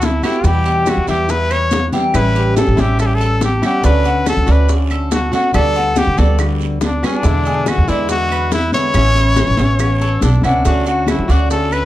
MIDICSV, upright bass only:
0, 0, Header, 1, 2, 480
1, 0, Start_track
1, 0, Key_signature, 2, "major"
1, 0, Tempo, 425230
1, 502, Time_signature, 4, 2, 24, 8
1, 13376, End_track
2, 0, Start_track
2, 0, Title_t, "Upright bass"
2, 0, Program_c, 0, 32
2, 0, Note_on_c, 0, 38, 80
2, 217, Note_off_c, 0, 38, 0
2, 495, Note_on_c, 0, 40, 91
2, 1066, Note_off_c, 0, 40, 0
2, 1097, Note_on_c, 0, 40, 81
2, 1208, Note_off_c, 0, 40, 0
2, 1215, Note_on_c, 0, 40, 77
2, 2129, Note_off_c, 0, 40, 0
2, 2419, Note_on_c, 0, 33, 89
2, 2986, Note_off_c, 0, 33, 0
2, 3017, Note_on_c, 0, 33, 82
2, 3122, Note_off_c, 0, 33, 0
2, 3129, Note_on_c, 0, 33, 80
2, 4045, Note_off_c, 0, 33, 0
2, 4335, Note_on_c, 0, 38, 87
2, 4903, Note_off_c, 0, 38, 0
2, 4932, Note_on_c, 0, 38, 77
2, 5046, Note_off_c, 0, 38, 0
2, 5056, Note_on_c, 0, 38, 80
2, 5969, Note_off_c, 0, 38, 0
2, 6258, Note_on_c, 0, 38, 89
2, 6826, Note_off_c, 0, 38, 0
2, 6854, Note_on_c, 0, 38, 78
2, 6968, Note_off_c, 0, 38, 0
2, 6982, Note_on_c, 0, 38, 84
2, 7894, Note_off_c, 0, 38, 0
2, 8178, Note_on_c, 0, 40, 88
2, 8748, Note_off_c, 0, 40, 0
2, 8782, Note_on_c, 0, 40, 86
2, 8894, Note_off_c, 0, 40, 0
2, 8900, Note_on_c, 0, 40, 84
2, 9816, Note_off_c, 0, 40, 0
2, 10097, Note_on_c, 0, 33, 93
2, 10670, Note_off_c, 0, 33, 0
2, 10697, Note_on_c, 0, 33, 82
2, 10813, Note_off_c, 0, 33, 0
2, 10819, Note_on_c, 0, 33, 81
2, 11506, Note_off_c, 0, 33, 0
2, 11539, Note_on_c, 0, 35, 76
2, 11758, Note_off_c, 0, 35, 0
2, 11786, Note_on_c, 0, 37, 77
2, 12002, Note_off_c, 0, 37, 0
2, 12026, Note_on_c, 0, 38, 84
2, 12597, Note_off_c, 0, 38, 0
2, 12629, Note_on_c, 0, 38, 84
2, 12736, Note_off_c, 0, 38, 0
2, 12743, Note_on_c, 0, 38, 79
2, 13376, Note_off_c, 0, 38, 0
2, 13376, End_track
0, 0, End_of_file